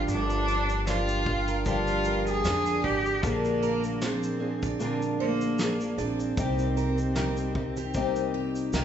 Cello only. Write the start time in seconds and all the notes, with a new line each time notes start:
0.10 D4
0.88 F4
1.67 F4
2.28 G#4
2.84 G4
3.24 A#3
4.03 C4
4.82 C4
5.21 A#3
5.99 C4